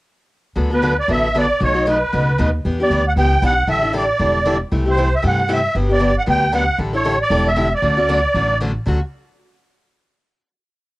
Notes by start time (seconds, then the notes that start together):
0.56 D2 D3 F#3 B3 F#4 A4
0.70 B3 F#4 A4 B4
0.82 D3 F#3 B3 F#4 A4
1.00 D5
1.08 A1 D3 F#3 B3 F#4 A4 E5
1.34 D3 F#3 B3 F#4 A4 D5
1.60 B1 B2 F#3 A3 D#4 F#4 C#5
1.74 A3 D#4 F#4
1.86 B2 F#3 A3 D#4 F#4 B4
2.12 C#2 B2 F#3 A3 D#4 F#4
2.38 D#2 B2 F#3 A3 D#4 F#4
2.65 E2 E3 B3 D4 G4
2.80 B3 D4 G4 D5
2.90 D2 E3 B3 D4 G4
3.08 F#5
3.16 C#2 E3 B3 D4 G4 G5
3.42 B1 E3 B3 D4 G4 F#5
3.67 A1 D3 G3 D4 E4 A4 E5
3.82 D4 E4 A4
3.93 D3 G3 D4 E4 A4
3.97 D5
4.19 E1 D3 G3 D4 E4 A4
4.45 D3 G3 D4 E4 A4
4.71 C2 C3 E3 A3 E4 G4
4.85 A3 E4 G4
4.90 C5
4.97 C3 E3 A3 E4 G4
5.15 E5
5.22 G2 C3 E3 A3 E4 G4
5.27 F#5
5.48 C3 E3 A3 E4 G4
5.52 E5
5.74 G1 D3 F#3 B3 D4 G4
5.89 B3 D4 G4 D5
5.99 D3 F#3 B3 D4 G4
6.18 F#5
6.26 D2 D3 F#3 B3 D4 G4 G5
6.52 D3 F#3 B3 D4 G4 F#5
6.78 A1 D3 G3 D4 E4 A4
6.93 D4 E4 A4 C#5
7.04 D3 G3 D4 E4 A4
7.22 D5
7.30 E1 D3 G3 D4 E4 A4
7.48 E5
7.56 D3 G3 D4 E4 A4
7.75 D5
7.82 D2 D3 F#3 A3 C#4 F#4
7.97 A3 C#4 F#4
8.08 D3 F#3 A3 C#4 F#4
8.34 A1 D3 F#3 A3 C#4 F#4
8.60 D3 F#3 A3 C#4 F#4
8.86 D2 D3 F#3 A3 C#4 F#4